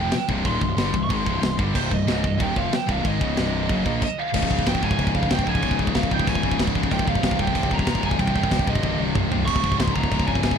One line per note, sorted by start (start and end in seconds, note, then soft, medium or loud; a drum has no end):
0.00 0.11 F1 medium
0.00 0.12 F2 medium
0.00 0.12 C3 loud
0.00 0.12 F3 loud
0.00 0.26 G5 loud
0.11 muted distorted electric guitar stroke medium
0.11 muted picked electric bass stroke soft
0.11 snare loud
0.11 china medium
0.28 0.44 C1 loud
0.28 0.44 C2 loud
0.28 0.44 G2 loud
0.28 0.45 C3 loud
0.28 kick loud
0.44 0.60 D#1 loud
0.44 0.60 D#2 loud
0.44 0.60 A#2 loud
0.44 0.61 D#3 loud
0.44 0.61 C6 loud
0.44 kick loud
0.44 china medium
0.61 0.76 C1 medium
0.61 0.74 C2 medium
0.61 0.74 G2 medium
0.61 1.00 C6 loud
0.61 kick medium
0.77 0.92 G1 medium
0.77 0.92 G2 medium
0.77 0.93 D3 loud
0.77 0.94 G3 loud
0.77 snare loud
0.77 china medium
0.93 1.09 C1 medium
0.93 1.06 C2 medium
0.93 1.07 G2 medium
0.93 kick loud
1.03 1.11 C#6 medium
1.09 1.25 G#1 medium
1.09 1.25 G#2 loud
1.09 1.25 D#3 loud
1.09 1.26 G#3 loud
1.09 1.56 C6 loud
1.09 kick loud
1.09 china medium
1.25 1.41 C1 loud
1.25 1.40 C2 loud
1.25 1.41 G2 loud
1.25 1.42 C3 loud
1.25 kick loud
1.42 1.57 C1 medium
1.42 1.55 C2 medium
1.42 1.55 G2 medium
1.42 snare loud
1.42 china medium
1.57 1.74 G1 loud
1.57 1.74 G2 loud
1.57 1.74 D3 loud
1.57 1.74 G3 loud
1.57 kick loud
1.74 1.90 C1 loud
1.74 1.90 C2 loud
1.74 1.91 G2 loud
1.74 1.91 C3 loud
1.74 1.93 C5 loud
1.74 kick loud
1.74 china medium
1.74 crash loud
1.91 2.06 C1 medium
1.91 2.05 C2 medium
1.91 2.05 G2 medium
1.91 2.43 D#5 loud
1.91 kick medium
2.07 2.22 C#1 loud
2.07 2.23 C#2 loud
2.07 2.23 G#2 loud
2.07 2.24 C#3 loud
2.07 snare loud
2.07 china medium
2.23 2.39 C1 medium
2.23 2.36 C2 medium
2.23 2.37 G2 medium
2.23 kick loud
2.38 2.55 D#1 loud
2.38 2.54 D#2 loud
2.38 2.54 A#2 loud
2.38 2.55 D#3 loud
2.38 kick loud
2.38 china medium
2.42 2.57 G5 medium
2.54 2.71 F1 medium
2.54 2.71 F2 medium
2.54 2.71 C3 loud
2.54 2.71 F3 loud
2.54 2.72 F5 medium
2.54 kick medium
2.71 2.91 G5 medium
2.71 muted picked electric bass stroke soft
2.71 muted distorted electric guitar stroke medium
2.71 snare loud
2.71 china medium
2.86 3.04 C1 medium
2.86 3.02 C2 medium
2.86 3.02 G2 loud
2.86 3.03 C3 loud
2.86 kick loud
2.91 3.06 F5 medium
3.02 3.20 G#1 medium
3.02 3.19 G#2 loud
3.02 3.19 D#3 loud
3.02 3.20 G#3 loud
3.02 kick loud
3.02 china medium
3.07 4.02 D#5 loud
3.19 3.36 C#1 loud
3.19 3.36 C#2 medium
3.19 3.36 G#2 loud
3.19 3.36 C#3 loud
3.19 kick loud
3.36 3.67 C1 medium
3.36 3.69 C2 medium
3.36 3.69 G2 medium
3.36 3.69 C3 loud
3.36 snare loud
3.36 china medium
3.69 3.85 F#1 loud
3.69 3.85 F#2 loud
3.69 3.85 C#3 loud
3.69 3.86 F#3 loud
3.69 kick loud
3.69 china medium
3.85 4.01 A#1 medium
3.85 4.01 A#2 medium
3.85 4.01 F3 loud
3.85 4.02 A#3 loud
3.85 kick medium
4.02 4.18 D#5 medium
4.02 kick loud
4.02 crash loud
4.19 4.51 F5 medium
4.34 4.46 C#1 loud
4.34 4.51 C#2 medium
4.34 4.50 G#2 loud
4.34 4.50 C#3 loud
4.34 kick medium
4.34 crash loud
4.34 crash medium
4.43 kick loud
4.50 4.62 C#1 medium
4.50 4.65 C#2 medium
4.50 4.65 G#2 medium
4.50 4.67 C#3 loud
4.50 4.68 F5 loud
4.50 kick medium
4.59 kick medium
4.66 4.78 C#1 loud
4.66 4.82 C#2 loud
4.66 4.82 G#2 loud
4.66 4.81 C#3 loud
4.66 4.83 G5 loud
4.66 kick medium
4.66 snare loud
4.66 crash medium
4.75 kick medium
4.82 4.95 C#1 medium
4.82 4.97 C#2 medium
4.82 4.98 G#2 medium
4.82 4.98 C#3 loud
4.82 5.15 G#5 loud
4.82 kick medium
4.91 kick loud
4.98 5.11 C#1 loud
4.98 5.14 C#2 loud
4.98 5.14 G#2 loud
4.98 5.13 C#3 loud
4.98 kick loud
4.98 crash medium
5.07 kick loud
5.15 5.27 F1 medium
5.15 5.29 C#2 medium
5.15 5.30 G#2 loud
5.15 5.31 C#3 loud
5.15 5.32 F5 loud
5.15 kick medium
5.23 kick medium
5.30 5.43 C#1 loud
5.30 5.46 C#2 medium
5.30 5.45 G#2 medium
5.30 5.45 C#3 medium
5.30 5.49 G5 medium
5.30 kick medium
5.30 snare loud
5.30 crash medium
5.39 kick medium
5.46 5.59 C#1 loud
5.46 5.61 C#2 medium
5.46 5.62 G#2 medium
5.46 5.62 C#3 loud
5.46 5.80 G#5 loud
5.46 kick medium
5.55 kick loud
5.62 5.75 C#1 loud
5.62 5.79 C#2 loud
5.62 5.78 G#2 loud
5.62 5.77 C#3 loud
5.62 kick medium
5.62 crash medium
5.71 kick loud
5.78 5.91 C#1 medium
5.78 5.93 C#2 medium
5.78 5.94 G#2 medium
5.78 5.94 C#3 loud
5.78 kick medium
5.87 kick medium
5.94 6.07 C#1 loud
5.94 6.10 C#2 loud
5.94 6.10 G#2 loud
5.94 6.09 C#3 loud
5.94 6.13 F5 medium
5.94 kick medium
5.94 snare loud
5.94 crash medium
6.03 kick medium
6.11 6.23 C#1 loud
6.11 6.26 C#2 medium
6.11 6.26 G#2 medium
6.11 6.27 C#3 medium
6.11 6.27 G5 loud
6.11 kick medium
6.19 kick medium
6.27 6.39 C#1 loud
6.27 6.43 C#2 medium
6.27 6.42 G#2 loud
6.27 6.42 C#3 loud
6.27 6.59 G#5 loud
6.27 kick loud
6.27 crash medium
6.35 kick medium
6.43 6.55 C#1 medium
6.43 6.58 C#2 medium
6.43 6.59 G#2 loud
6.43 6.59 C#3 loud
6.43 kick medium
6.51 kick medium
6.59 6.71 C#1 loud
6.59 6.75 C#2 medium
6.59 6.75 G#2 medium
6.59 6.74 C#3 loud
6.59 kick medium
6.59 snare loud
6.59 crash medium
6.67 kick medium
6.75 6.87 C#1 loud
6.75 6.91 C#2 medium
6.75 6.91 G#2 medium
6.75 6.90 C#3 loud
6.75 kick medium
6.83 kick medium
6.91 7.03 C1 loud
6.91 7.08 C2 loud
6.91 7.06 G2 loud
6.91 7.06 C3 loud
6.91 7.08 G5 loud
6.91 kick medium
6.91 crash medium
6.99 kick loud
7.07 7.19 C1 loud
7.07 7.23 C2 loud
7.07 7.22 G2 loud
7.07 7.24 C3 loud
7.07 7.41 F5 loud
7.07 kick medium
7.15 kick medium
7.23 7.35 C1 loud
7.23 7.40 C2 loud
7.23 7.39 G2 loud
7.23 7.39 C3 loud
7.23 kick medium
7.23 snare loud
7.23 crash medium
7.31 kick medium
7.39 7.51 C1 loud
7.39 7.55 C2 medium
7.39 7.56 G2 loud
7.39 7.56 C3 loud
7.39 7.73 G5 loud
7.39 kick medium
7.47 kick medium
7.55 7.67 C1 medium
7.55 7.71 C2 medium
7.55 7.71 G2 medium
7.55 7.70 C3 loud
7.55 kick medium
7.55 crash medium
7.63 kick medium
7.71 7.83 D#1 medium
7.71 7.86 C2 loud
7.71 7.87 G2 loud
7.71 7.87 C3 loud
7.71 8.02 A#5 loud
7.71 kick medium
7.79 kick medium
7.87 7.99 C1 loud
7.87 8.04 C2 medium
7.87 8.03 G2 medium
7.87 8.03 C3 loud
7.87 kick loud
7.87 snare loud
7.87 crash medium
7.95 kick medium
8.03 8.15 C1 medium
8.03 8.18 C2 medium
8.03 8.18 G2 medium
8.03 8.19 C3 loud
8.03 8.20 G#5 medium
8.03 kick medium
8.11 kick medium
8.19 8.31 C1 loud
8.19 8.35 C2 loud
8.19 8.35 G2 loud
8.19 8.34 C3 loud
8.19 8.35 G5 loud
8.19 kick medium
8.19 crash medium
8.27 kick loud
8.35 8.47 C1 medium
8.35 8.50 C2 medium
8.35 8.50 G2 medium
8.35 8.51 C3 loud
8.35 8.69 G5 loud
8.35 kick medium
8.43 kick loud
8.51 8.63 C1 medium
8.51 8.67 C2 loud
8.51 8.66 G2 medium
8.51 8.65 C3 loud
8.51 kick medium
8.51 snare loud
8.51 crash medium
8.59 kick medium
8.67 8.79 C1 loud
8.67 8.81 C2 medium
8.67 8.82 G2 medium
8.67 8.83 C3 medium
8.67 8.98 D#5 medium
8.67 kick loud
8.75 kick loud
8.82 8.95 C1 medium
8.82 8.99 C2 medium
8.82 8.98 G2 loud
8.82 8.98 C3 loud
8.82 kick medium
8.82 high tom medium
8.98 9.10 C1 medium
8.98 9.14 C2 medium
8.98 9.14 G2 loud
8.98 9.15 C3 loud
9.15 9.27 C1 loud
9.15 9.31 C2 medium
9.15 9.31 G2 medium
9.15 9.30 C3 loud
9.15 kick loud
9.15 mid tom loud
9.31 9.43 C1 medium
9.31 9.47 C2 medium
9.31 9.47 G2 loud
9.31 9.46 C3 loud
9.31 floor tom loud
9.46 9.59 C#1 loud
9.46 9.64 C#2 loud
9.46 9.63 G#2 loud
9.46 9.63 C#3 loud
9.46 9.76 C#6 loud
9.46 kick medium
9.46 crash loud
9.56 kick loud
9.63 9.75 C#1 medium
9.63 9.78 C#2 medium
9.63 9.78 G#2 medium
9.63 9.80 C#3 loud
9.63 kick medium
9.72 kick medium
9.79 9.91 C#1 medium
9.79 9.95 C#2 loud
9.79 9.93 G#2 loud
9.79 9.94 C#3 loud
9.79 9.94 C6 loud
9.79 kick medium
9.79 snare loud
9.79 crash medium
9.88 kick loud
9.94 10.07 C#1 loud
9.94 10.09 C#2 medium
9.94 10.09 G#2 loud
9.94 10.10 C#3 loud
9.94 10.24 A#5 loud
9.94 kick medium
10.04 kick medium
10.10 10.23 C#1 loud
10.10 10.26 C#2 medium
10.10 10.26 G#2 medium
10.10 10.26 C#3 loud
10.10 kick loud
10.10 crash medium
10.20 kick medium
10.27 10.39 F1 medium
10.27 10.41 C#2 medium
10.27 10.42 G#2 loud
10.27 10.43 C#3 loud
10.27 10.58 G#5 loud
10.27 kick medium
10.35 kick medium
10.43 10.55 C#1 loud
10.43 10.58 C#2 medium
10.43 10.58 G#2 loud
10.43 10.57 C#3 loud
10.43 kick loud
10.43 snare loud
10.43 crash medium
10.51 kick medium